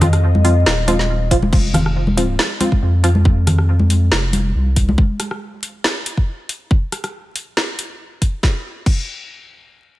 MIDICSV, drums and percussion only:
0, 0, Header, 1, 2, 480
1, 0, Start_track
1, 0, Tempo, 431655
1, 1696, Time_signature, 4, 2, 24, 8
1, 11113, End_track
2, 0, Start_track
2, 0, Title_t, "Drums"
2, 12, Note_on_c, 9, 64, 100
2, 18, Note_on_c, 9, 37, 56
2, 18, Note_on_c, 9, 42, 81
2, 124, Note_off_c, 9, 64, 0
2, 129, Note_off_c, 9, 37, 0
2, 129, Note_off_c, 9, 42, 0
2, 145, Note_on_c, 9, 37, 55
2, 145, Note_on_c, 9, 42, 38
2, 256, Note_off_c, 9, 37, 0
2, 256, Note_off_c, 9, 42, 0
2, 389, Note_on_c, 9, 63, 83
2, 497, Note_on_c, 9, 46, 66
2, 500, Note_off_c, 9, 63, 0
2, 608, Note_off_c, 9, 46, 0
2, 738, Note_on_c, 9, 38, 119
2, 850, Note_off_c, 9, 38, 0
2, 973, Note_on_c, 9, 63, 67
2, 977, Note_on_c, 9, 42, 82
2, 1084, Note_off_c, 9, 63, 0
2, 1089, Note_off_c, 9, 42, 0
2, 1105, Note_on_c, 9, 38, 40
2, 1216, Note_off_c, 9, 38, 0
2, 1457, Note_on_c, 9, 36, 58
2, 1459, Note_on_c, 9, 46, 105
2, 1568, Note_off_c, 9, 36, 0
2, 1570, Note_off_c, 9, 46, 0
2, 1584, Note_on_c, 9, 63, 99
2, 1696, Note_off_c, 9, 63, 0
2, 1697, Note_on_c, 9, 36, 123
2, 1700, Note_on_c, 9, 49, 88
2, 1808, Note_off_c, 9, 36, 0
2, 1811, Note_off_c, 9, 49, 0
2, 1931, Note_on_c, 9, 64, 101
2, 1939, Note_on_c, 9, 37, 55
2, 1939, Note_on_c, 9, 42, 81
2, 2042, Note_off_c, 9, 64, 0
2, 2050, Note_off_c, 9, 37, 0
2, 2050, Note_off_c, 9, 42, 0
2, 2069, Note_on_c, 9, 37, 52
2, 2180, Note_off_c, 9, 37, 0
2, 2303, Note_on_c, 9, 63, 85
2, 2414, Note_off_c, 9, 63, 0
2, 2419, Note_on_c, 9, 42, 84
2, 2530, Note_off_c, 9, 42, 0
2, 2658, Note_on_c, 9, 38, 115
2, 2770, Note_off_c, 9, 38, 0
2, 2895, Note_on_c, 9, 63, 66
2, 2898, Note_on_c, 9, 42, 80
2, 3006, Note_off_c, 9, 63, 0
2, 3009, Note_off_c, 9, 42, 0
2, 3025, Note_on_c, 9, 36, 60
2, 3136, Note_off_c, 9, 36, 0
2, 3378, Note_on_c, 9, 42, 82
2, 3489, Note_off_c, 9, 42, 0
2, 3502, Note_on_c, 9, 63, 80
2, 3614, Note_off_c, 9, 63, 0
2, 3616, Note_on_c, 9, 36, 120
2, 3728, Note_off_c, 9, 36, 0
2, 3858, Note_on_c, 9, 64, 89
2, 3860, Note_on_c, 9, 37, 51
2, 3860, Note_on_c, 9, 42, 81
2, 3969, Note_off_c, 9, 64, 0
2, 3972, Note_off_c, 9, 37, 0
2, 3972, Note_off_c, 9, 42, 0
2, 3986, Note_on_c, 9, 37, 48
2, 4097, Note_off_c, 9, 37, 0
2, 4220, Note_on_c, 9, 63, 85
2, 4331, Note_off_c, 9, 63, 0
2, 4338, Note_on_c, 9, 42, 84
2, 4450, Note_off_c, 9, 42, 0
2, 4577, Note_on_c, 9, 38, 118
2, 4688, Note_off_c, 9, 38, 0
2, 4812, Note_on_c, 9, 63, 70
2, 4818, Note_on_c, 9, 42, 80
2, 4923, Note_off_c, 9, 63, 0
2, 4929, Note_off_c, 9, 42, 0
2, 5297, Note_on_c, 9, 36, 61
2, 5297, Note_on_c, 9, 42, 80
2, 5408, Note_off_c, 9, 42, 0
2, 5409, Note_off_c, 9, 36, 0
2, 5433, Note_on_c, 9, 63, 97
2, 5537, Note_on_c, 9, 36, 122
2, 5544, Note_off_c, 9, 63, 0
2, 5649, Note_off_c, 9, 36, 0
2, 5778, Note_on_c, 9, 37, 49
2, 5778, Note_on_c, 9, 42, 79
2, 5889, Note_off_c, 9, 37, 0
2, 5889, Note_off_c, 9, 42, 0
2, 5906, Note_on_c, 9, 37, 50
2, 6017, Note_off_c, 9, 37, 0
2, 6259, Note_on_c, 9, 42, 80
2, 6370, Note_off_c, 9, 42, 0
2, 6498, Note_on_c, 9, 38, 127
2, 6609, Note_off_c, 9, 38, 0
2, 6740, Note_on_c, 9, 42, 78
2, 6851, Note_off_c, 9, 42, 0
2, 6866, Note_on_c, 9, 36, 62
2, 6977, Note_off_c, 9, 36, 0
2, 7219, Note_on_c, 9, 42, 81
2, 7331, Note_off_c, 9, 42, 0
2, 7459, Note_on_c, 9, 36, 125
2, 7570, Note_off_c, 9, 36, 0
2, 7699, Note_on_c, 9, 37, 48
2, 7699, Note_on_c, 9, 42, 75
2, 7810, Note_off_c, 9, 37, 0
2, 7810, Note_off_c, 9, 42, 0
2, 7827, Note_on_c, 9, 37, 51
2, 7827, Note_on_c, 9, 42, 35
2, 7938, Note_off_c, 9, 37, 0
2, 7938, Note_off_c, 9, 42, 0
2, 8180, Note_on_c, 9, 42, 74
2, 8291, Note_off_c, 9, 42, 0
2, 8418, Note_on_c, 9, 38, 119
2, 8529, Note_off_c, 9, 38, 0
2, 8660, Note_on_c, 9, 42, 77
2, 8771, Note_off_c, 9, 42, 0
2, 9137, Note_on_c, 9, 36, 57
2, 9138, Note_on_c, 9, 42, 77
2, 9248, Note_off_c, 9, 36, 0
2, 9249, Note_off_c, 9, 42, 0
2, 9375, Note_on_c, 9, 36, 107
2, 9379, Note_on_c, 9, 38, 79
2, 9487, Note_off_c, 9, 36, 0
2, 9490, Note_off_c, 9, 38, 0
2, 9855, Note_on_c, 9, 36, 108
2, 9857, Note_on_c, 9, 49, 84
2, 9966, Note_off_c, 9, 36, 0
2, 9968, Note_off_c, 9, 49, 0
2, 11113, End_track
0, 0, End_of_file